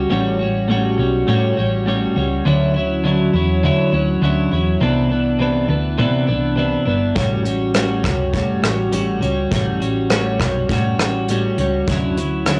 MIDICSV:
0, 0, Header, 1, 4, 480
1, 0, Start_track
1, 0, Tempo, 588235
1, 91, Time_signature, 4, 2, 24, 8
1, 10281, End_track
2, 0, Start_track
2, 0, Title_t, "Clean electric guitar"
2, 0, Program_c, 0, 27
2, 0, Note_on_c, 0, 61, 43
2, 0, Note_on_c, 0, 66, 51
2, 80, Note_on_c, 0, 45, 81
2, 83, Note_off_c, 0, 66, 0
2, 85, Note_off_c, 0, 61, 0
2, 86, Note_on_c, 0, 55, 81
2, 95, Note_on_c, 0, 61, 87
2, 98, Note_on_c, 0, 66, 83
2, 309, Note_off_c, 0, 66, 0
2, 319, Note_on_c, 0, 66, 51
2, 325, Note_off_c, 0, 45, 0
2, 325, Note_off_c, 0, 61, 0
2, 328, Note_off_c, 0, 55, 0
2, 335, Note_on_c, 0, 61, 44
2, 344, Note_on_c, 0, 55, 44
2, 556, Note_on_c, 0, 45, 61
2, 560, Note_off_c, 0, 55, 0
2, 565, Note_off_c, 0, 61, 0
2, 565, Note_off_c, 0, 66, 0
2, 570, Note_on_c, 0, 55, 62
2, 575, Note_on_c, 0, 61, 62
2, 581, Note_on_c, 0, 66, 67
2, 788, Note_off_c, 0, 66, 0
2, 798, Note_on_c, 0, 66, 47
2, 801, Note_off_c, 0, 61, 0
2, 803, Note_off_c, 0, 45, 0
2, 810, Note_off_c, 0, 55, 0
2, 811, Note_on_c, 0, 61, 47
2, 820, Note_on_c, 0, 55, 46
2, 1034, Note_off_c, 0, 55, 0
2, 1036, Note_on_c, 0, 45, 78
2, 1039, Note_off_c, 0, 61, 0
2, 1044, Note_off_c, 0, 66, 0
2, 1044, Note_on_c, 0, 55, 76
2, 1049, Note_on_c, 0, 61, 85
2, 1058, Note_on_c, 0, 66, 85
2, 1271, Note_off_c, 0, 66, 0
2, 1280, Note_on_c, 0, 66, 58
2, 1283, Note_off_c, 0, 45, 0
2, 1286, Note_off_c, 0, 61, 0
2, 1287, Note_off_c, 0, 55, 0
2, 1296, Note_on_c, 0, 61, 49
2, 1307, Note_on_c, 0, 55, 44
2, 1518, Note_off_c, 0, 55, 0
2, 1518, Note_on_c, 0, 45, 62
2, 1525, Note_off_c, 0, 66, 0
2, 1526, Note_off_c, 0, 61, 0
2, 1528, Note_on_c, 0, 55, 67
2, 1535, Note_on_c, 0, 61, 67
2, 1541, Note_on_c, 0, 66, 61
2, 1752, Note_off_c, 0, 66, 0
2, 1762, Note_on_c, 0, 66, 48
2, 1763, Note_off_c, 0, 45, 0
2, 1765, Note_off_c, 0, 61, 0
2, 1769, Note_off_c, 0, 55, 0
2, 1775, Note_on_c, 0, 61, 50
2, 1788, Note_on_c, 0, 55, 45
2, 2001, Note_on_c, 0, 50, 81
2, 2004, Note_off_c, 0, 55, 0
2, 2004, Note_off_c, 0, 61, 0
2, 2005, Note_off_c, 0, 66, 0
2, 2008, Note_on_c, 0, 54, 76
2, 2014, Note_on_c, 0, 61, 86
2, 2019, Note_on_c, 0, 64, 86
2, 2226, Note_off_c, 0, 64, 0
2, 2236, Note_on_c, 0, 64, 56
2, 2240, Note_off_c, 0, 61, 0
2, 2245, Note_off_c, 0, 50, 0
2, 2248, Note_off_c, 0, 54, 0
2, 2250, Note_on_c, 0, 61, 46
2, 2264, Note_on_c, 0, 54, 44
2, 2478, Note_on_c, 0, 50, 66
2, 2480, Note_off_c, 0, 54, 0
2, 2482, Note_off_c, 0, 64, 0
2, 2485, Note_off_c, 0, 61, 0
2, 2490, Note_on_c, 0, 54, 67
2, 2495, Note_on_c, 0, 61, 66
2, 2503, Note_on_c, 0, 64, 69
2, 2709, Note_off_c, 0, 64, 0
2, 2719, Note_on_c, 0, 64, 55
2, 2723, Note_off_c, 0, 50, 0
2, 2727, Note_off_c, 0, 61, 0
2, 2729, Note_off_c, 0, 54, 0
2, 2737, Note_on_c, 0, 61, 49
2, 2746, Note_on_c, 0, 54, 44
2, 2961, Note_off_c, 0, 54, 0
2, 2964, Note_off_c, 0, 64, 0
2, 2964, Note_on_c, 0, 50, 82
2, 2968, Note_off_c, 0, 61, 0
2, 2971, Note_on_c, 0, 54, 74
2, 2978, Note_on_c, 0, 61, 77
2, 2981, Note_on_c, 0, 64, 90
2, 3188, Note_off_c, 0, 64, 0
2, 3198, Note_on_c, 0, 64, 51
2, 3203, Note_off_c, 0, 61, 0
2, 3206, Note_off_c, 0, 50, 0
2, 3210, Note_off_c, 0, 54, 0
2, 3212, Note_on_c, 0, 61, 51
2, 3224, Note_on_c, 0, 54, 45
2, 3439, Note_on_c, 0, 50, 58
2, 3441, Note_off_c, 0, 54, 0
2, 3443, Note_off_c, 0, 64, 0
2, 3446, Note_off_c, 0, 61, 0
2, 3450, Note_on_c, 0, 54, 64
2, 3456, Note_on_c, 0, 61, 65
2, 3466, Note_on_c, 0, 64, 64
2, 3671, Note_off_c, 0, 64, 0
2, 3681, Note_on_c, 0, 64, 48
2, 3684, Note_off_c, 0, 50, 0
2, 3687, Note_off_c, 0, 61, 0
2, 3689, Note_off_c, 0, 54, 0
2, 3696, Note_on_c, 0, 61, 47
2, 3708, Note_on_c, 0, 54, 47
2, 3922, Note_on_c, 0, 48, 78
2, 3923, Note_off_c, 0, 54, 0
2, 3924, Note_off_c, 0, 64, 0
2, 3926, Note_on_c, 0, 52, 76
2, 3932, Note_off_c, 0, 61, 0
2, 3937, Note_on_c, 0, 59, 85
2, 3940, Note_on_c, 0, 62, 90
2, 4147, Note_off_c, 0, 62, 0
2, 4157, Note_on_c, 0, 62, 51
2, 4164, Note_off_c, 0, 59, 0
2, 4165, Note_off_c, 0, 48, 0
2, 4167, Note_off_c, 0, 52, 0
2, 4173, Note_on_c, 0, 59, 47
2, 4185, Note_on_c, 0, 52, 45
2, 4396, Note_on_c, 0, 48, 58
2, 4398, Note_off_c, 0, 52, 0
2, 4402, Note_off_c, 0, 62, 0
2, 4408, Note_off_c, 0, 59, 0
2, 4408, Note_on_c, 0, 52, 63
2, 4417, Note_on_c, 0, 59, 64
2, 4425, Note_on_c, 0, 62, 65
2, 4627, Note_off_c, 0, 62, 0
2, 4637, Note_on_c, 0, 62, 49
2, 4639, Note_off_c, 0, 59, 0
2, 4642, Note_off_c, 0, 48, 0
2, 4648, Note_off_c, 0, 52, 0
2, 4649, Note_on_c, 0, 59, 45
2, 4662, Note_on_c, 0, 52, 41
2, 4875, Note_off_c, 0, 52, 0
2, 4878, Note_on_c, 0, 48, 76
2, 4880, Note_off_c, 0, 59, 0
2, 4882, Note_off_c, 0, 62, 0
2, 4885, Note_on_c, 0, 52, 84
2, 4890, Note_on_c, 0, 59, 80
2, 4897, Note_on_c, 0, 62, 76
2, 5109, Note_off_c, 0, 62, 0
2, 5119, Note_on_c, 0, 62, 48
2, 5120, Note_off_c, 0, 59, 0
2, 5123, Note_off_c, 0, 48, 0
2, 5126, Note_off_c, 0, 52, 0
2, 5130, Note_on_c, 0, 59, 47
2, 5140, Note_on_c, 0, 52, 48
2, 5351, Note_on_c, 0, 48, 56
2, 5355, Note_off_c, 0, 52, 0
2, 5360, Note_off_c, 0, 59, 0
2, 5363, Note_off_c, 0, 62, 0
2, 5365, Note_on_c, 0, 52, 60
2, 5370, Note_on_c, 0, 59, 64
2, 5378, Note_on_c, 0, 62, 60
2, 5584, Note_off_c, 0, 62, 0
2, 5593, Note_on_c, 0, 62, 50
2, 5598, Note_off_c, 0, 59, 0
2, 5600, Note_off_c, 0, 48, 0
2, 5606, Note_off_c, 0, 52, 0
2, 5607, Note_on_c, 0, 59, 46
2, 5619, Note_on_c, 0, 52, 44
2, 5835, Note_on_c, 0, 45, 76
2, 5836, Note_off_c, 0, 52, 0
2, 5839, Note_on_c, 0, 55, 80
2, 5841, Note_off_c, 0, 59, 0
2, 5841, Note_off_c, 0, 62, 0
2, 5845, Note_on_c, 0, 61, 81
2, 5849, Note_on_c, 0, 66, 83
2, 6064, Note_off_c, 0, 66, 0
2, 6074, Note_on_c, 0, 66, 51
2, 6080, Note_off_c, 0, 61, 0
2, 6081, Note_off_c, 0, 45, 0
2, 6084, Note_off_c, 0, 55, 0
2, 6090, Note_on_c, 0, 61, 46
2, 6101, Note_on_c, 0, 55, 41
2, 6317, Note_on_c, 0, 45, 57
2, 6320, Note_off_c, 0, 55, 0
2, 6321, Note_off_c, 0, 66, 0
2, 6329, Note_off_c, 0, 61, 0
2, 6330, Note_on_c, 0, 55, 68
2, 6338, Note_on_c, 0, 61, 67
2, 6347, Note_on_c, 0, 66, 68
2, 6546, Note_off_c, 0, 66, 0
2, 6556, Note_on_c, 0, 66, 51
2, 6558, Note_off_c, 0, 61, 0
2, 6562, Note_off_c, 0, 45, 0
2, 6568, Note_on_c, 0, 61, 48
2, 6569, Note_off_c, 0, 55, 0
2, 6580, Note_on_c, 0, 55, 45
2, 6794, Note_off_c, 0, 55, 0
2, 6795, Note_on_c, 0, 45, 72
2, 6797, Note_off_c, 0, 61, 0
2, 6802, Note_off_c, 0, 66, 0
2, 6804, Note_on_c, 0, 55, 80
2, 6807, Note_on_c, 0, 61, 77
2, 6813, Note_on_c, 0, 66, 79
2, 7025, Note_off_c, 0, 66, 0
2, 7034, Note_on_c, 0, 66, 55
2, 7038, Note_off_c, 0, 61, 0
2, 7041, Note_off_c, 0, 45, 0
2, 7046, Note_off_c, 0, 55, 0
2, 7048, Note_on_c, 0, 61, 52
2, 7060, Note_on_c, 0, 55, 44
2, 7273, Note_off_c, 0, 55, 0
2, 7277, Note_on_c, 0, 45, 63
2, 7281, Note_off_c, 0, 66, 0
2, 7283, Note_off_c, 0, 61, 0
2, 7283, Note_on_c, 0, 55, 56
2, 7293, Note_on_c, 0, 61, 60
2, 7301, Note_on_c, 0, 66, 63
2, 7506, Note_off_c, 0, 66, 0
2, 7516, Note_on_c, 0, 66, 55
2, 7520, Note_off_c, 0, 61, 0
2, 7523, Note_off_c, 0, 45, 0
2, 7525, Note_off_c, 0, 55, 0
2, 7530, Note_on_c, 0, 61, 50
2, 7544, Note_on_c, 0, 55, 43
2, 7759, Note_off_c, 0, 55, 0
2, 7762, Note_off_c, 0, 66, 0
2, 7763, Note_on_c, 0, 45, 84
2, 7767, Note_off_c, 0, 61, 0
2, 7769, Note_on_c, 0, 55, 77
2, 7777, Note_on_c, 0, 61, 79
2, 7779, Note_on_c, 0, 66, 91
2, 7988, Note_off_c, 0, 66, 0
2, 7998, Note_on_c, 0, 66, 55
2, 8002, Note_off_c, 0, 61, 0
2, 8005, Note_off_c, 0, 45, 0
2, 8009, Note_off_c, 0, 55, 0
2, 8012, Note_on_c, 0, 61, 54
2, 8024, Note_on_c, 0, 55, 45
2, 8238, Note_on_c, 0, 45, 63
2, 8239, Note_off_c, 0, 55, 0
2, 8243, Note_off_c, 0, 66, 0
2, 8249, Note_on_c, 0, 55, 59
2, 8250, Note_off_c, 0, 61, 0
2, 8259, Note_on_c, 0, 61, 64
2, 8261, Note_on_c, 0, 66, 70
2, 8470, Note_off_c, 0, 66, 0
2, 8480, Note_on_c, 0, 66, 50
2, 8483, Note_off_c, 0, 45, 0
2, 8483, Note_off_c, 0, 61, 0
2, 8489, Note_off_c, 0, 55, 0
2, 8493, Note_on_c, 0, 61, 50
2, 8508, Note_on_c, 0, 55, 45
2, 8721, Note_off_c, 0, 55, 0
2, 8724, Note_off_c, 0, 66, 0
2, 8726, Note_on_c, 0, 45, 76
2, 8727, Note_off_c, 0, 61, 0
2, 8731, Note_on_c, 0, 55, 80
2, 8737, Note_on_c, 0, 61, 83
2, 8745, Note_on_c, 0, 66, 89
2, 8959, Note_off_c, 0, 66, 0
2, 8968, Note_off_c, 0, 45, 0
2, 8969, Note_on_c, 0, 66, 56
2, 8970, Note_off_c, 0, 55, 0
2, 8973, Note_off_c, 0, 61, 0
2, 8982, Note_on_c, 0, 61, 51
2, 8994, Note_on_c, 0, 55, 43
2, 9209, Note_off_c, 0, 66, 0
2, 9211, Note_on_c, 0, 45, 58
2, 9214, Note_off_c, 0, 55, 0
2, 9216, Note_off_c, 0, 61, 0
2, 9224, Note_on_c, 0, 55, 62
2, 9231, Note_on_c, 0, 61, 61
2, 9236, Note_on_c, 0, 66, 65
2, 9441, Note_off_c, 0, 66, 0
2, 9450, Note_off_c, 0, 45, 0
2, 9451, Note_on_c, 0, 66, 52
2, 9454, Note_off_c, 0, 61, 0
2, 9456, Note_off_c, 0, 55, 0
2, 9463, Note_on_c, 0, 61, 55
2, 9473, Note_on_c, 0, 55, 47
2, 9690, Note_off_c, 0, 66, 0
2, 9692, Note_on_c, 0, 50, 81
2, 9696, Note_off_c, 0, 61, 0
2, 9697, Note_off_c, 0, 55, 0
2, 9701, Note_on_c, 0, 54, 89
2, 9707, Note_on_c, 0, 61, 85
2, 9712, Note_on_c, 0, 64, 97
2, 9919, Note_off_c, 0, 64, 0
2, 9929, Note_on_c, 0, 64, 50
2, 9931, Note_off_c, 0, 50, 0
2, 9935, Note_off_c, 0, 54, 0
2, 9935, Note_off_c, 0, 61, 0
2, 9945, Note_on_c, 0, 61, 46
2, 9958, Note_on_c, 0, 54, 45
2, 10165, Note_off_c, 0, 54, 0
2, 10166, Note_on_c, 0, 50, 63
2, 10169, Note_off_c, 0, 64, 0
2, 10173, Note_off_c, 0, 61, 0
2, 10175, Note_on_c, 0, 54, 61
2, 10183, Note_on_c, 0, 61, 68
2, 10194, Note_on_c, 0, 64, 66
2, 10281, Note_off_c, 0, 50, 0
2, 10281, Note_off_c, 0, 54, 0
2, 10281, Note_off_c, 0, 61, 0
2, 10281, Note_off_c, 0, 64, 0
2, 10281, End_track
3, 0, Start_track
3, 0, Title_t, "Fingered electric bass"
3, 0, Program_c, 1, 33
3, 88, Note_on_c, 1, 33, 95
3, 776, Note_off_c, 1, 33, 0
3, 805, Note_on_c, 1, 35, 82
3, 999, Note_off_c, 1, 35, 0
3, 1046, Note_on_c, 1, 45, 92
3, 1240, Note_off_c, 1, 45, 0
3, 1291, Note_on_c, 1, 33, 76
3, 1674, Note_off_c, 1, 33, 0
3, 1766, Note_on_c, 1, 37, 85
3, 1959, Note_off_c, 1, 37, 0
3, 2002, Note_on_c, 1, 38, 92
3, 2693, Note_off_c, 1, 38, 0
3, 2724, Note_on_c, 1, 40, 85
3, 3014, Note_off_c, 1, 40, 0
3, 3203, Note_on_c, 1, 38, 90
3, 3397, Note_off_c, 1, 38, 0
3, 3443, Note_on_c, 1, 38, 78
3, 3637, Note_off_c, 1, 38, 0
3, 3687, Note_on_c, 1, 40, 80
3, 3879, Note_off_c, 1, 40, 0
3, 3926, Note_on_c, 1, 36, 86
3, 4614, Note_off_c, 1, 36, 0
3, 4642, Note_on_c, 1, 38, 86
3, 4889, Note_on_c, 1, 48, 98
3, 4901, Note_off_c, 1, 38, 0
3, 5123, Note_on_c, 1, 36, 82
3, 5135, Note_off_c, 1, 48, 0
3, 5509, Note_off_c, 1, 36, 0
3, 5605, Note_on_c, 1, 31, 75
3, 5798, Note_off_c, 1, 31, 0
3, 5843, Note_on_c, 1, 33, 92
3, 6533, Note_off_c, 1, 33, 0
3, 6559, Note_on_c, 1, 37, 84
3, 6851, Note_off_c, 1, 37, 0
3, 7040, Note_on_c, 1, 33, 81
3, 7235, Note_off_c, 1, 33, 0
3, 7284, Note_on_c, 1, 33, 79
3, 7478, Note_off_c, 1, 33, 0
3, 7523, Note_on_c, 1, 37, 80
3, 7717, Note_off_c, 1, 37, 0
3, 7764, Note_on_c, 1, 33, 96
3, 8454, Note_off_c, 1, 33, 0
3, 8483, Note_on_c, 1, 35, 84
3, 8677, Note_off_c, 1, 35, 0
3, 8723, Note_on_c, 1, 45, 89
3, 8917, Note_off_c, 1, 45, 0
3, 8970, Note_on_c, 1, 33, 74
3, 9354, Note_off_c, 1, 33, 0
3, 9449, Note_on_c, 1, 37, 86
3, 9641, Note_off_c, 1, 37, 0
3, 9690, Note_on_c, 1, 38, 89
3, 10281, Note_off_c, 1, 38, 0
3, 10281, End_track
4, 0, Start_track
4, 0, Title_t, "Drums"
4, 5840, Note_on_c, 9, 42, 65
4, 5843, Note_on_c, 9, 36, 100
4, 5922, Note_off_c, 9, 42, 0
4, 5925, Note_off_c, 9, 36, 0
4, 6081, Note_on_c, 9, 42, 47
4, 6162, Note_off_c, 9, 42, 0
4, 6318, Note_on_c, 9, 42, 62
4, 6322, Note_on_c, 9, 37, 82
4, 6399, Note_off_c, 9, 42, 0
4, 6404, Note_off_c, 9, 37, 0
4, 6561, Note_on_c, 9, 36, 86
4, 6567, Note_on_c, 9, 42, 46
4, 6570, Note_on_c, 9, 37, 79
4, 6643, Note_off_c, 9, 36, 0
4, 6649, Note_off_c, 9, 42, 0
4, 6652, Note_off_c, 9, 37, 0
4, 6802, Note_on_c, 9, 36, 81
4, 6805, Note_on_c, 9, 42, 54
4, 6884, Note_off_c, 9, 36, 0
4, 6886, Note_off_c, 9, 42, 0
4, 7048, Note_on_c, 9, 37, 86
4, 7051, Note_on_c, 9, 42, 51
4, 7129, Note_off_c, 9, 37, 0
4, 7132, Note_off_c, 9, 42, 0
4, 7282, Note_on_c, 9, 42, 66
4, 7364, Note_off_c, 9, 42, 0
4, 7527, Note_on_c, 9, 42, 41
4, 7608, Note_off_c, 9, 42, 0
4, 7765, Note_on_c, 9, 36, 92
4, 7765, Note_on_c, 9, 42, 64
4, 7847, Note_off_c, 9, 36, 0
4, 7847, Note_off_c, 9, 42, 0
4, 8009, Note_on_c, 9, 42, 47
4, 8091, Note_off_c, 9, 42, 0
4, 8240, Note_on_c, 9, 42, 64
4, 8245, Note_on_c, 9, 37, 85
4, 8322, Note_off_c, 9, 42, 0
4, 8326, Note_off_c, 9, 37, 0
4, 8483, Note_on_c, 9, 36, 83
4, 8489, Note_on_c, 9, 42, 45
4, 8492, Note_on_c, 9, 37, 88
4, 8565, Note_off_c, 9, 36, 0
4, 8571, Note_off_c, 9, 42, 0
4, 8573, Note_off_c, 9, 37, 0
4, 8725, Note_on_c, 9, 36, 79
4, 8728, Note_on_c, 9, 42, 59
4, 8807, Note_off_c, 9, 36, 0
4, 8809, Note_off_c, 9, 42, 0
4, 8971, Note_on_c, 9, 37, 86
4, 8974, Note_on_c, 9, 42, 54
4, 9053, Note_off_c, 9, 37, 0
4, 9056, Note_off_c, 9, 42, 0
4, 9207, Note_on_c, 9, 42, 66
4, 9289, Note_off_c, 9, 42, 0
4, 9449, Note_on_c, 9, 42, 44
4, 9531, Note_off_c, 9, 42, 0
4, 9691, Note_on_c, 9, 42, 62
4, 9692, Note_on_c, 9, 36, 97
4, 9772, Note_off_c, 9, 42, 0
4, 9773, Note_off_c, 9, 36, 0
4, 9933, Note_on_c, 9, 42, 52
4, 10015, Note_off_c, 9, 42, 0
4, 10165, Note_on_c, 9, 42, 63
4, 10170, Note_on_c, 9, 37, 85
4, 10247, Note_off_c, 9, 42, 0
4, 10251, Note_off_c, 9, 37, 0
4, 10281, End_track
0, 0, End_of_file